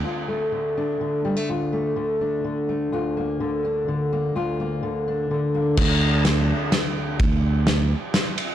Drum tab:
CC |------|------|------|------|
RD |------|------|------|------|
SD |------|------|------|------|
BD |------|------|------|------|

CC |x-----|------|
RD |--x-x-|x-x-xx|
SD |--o-o-|--o-o-|
BD |o-----|o-----|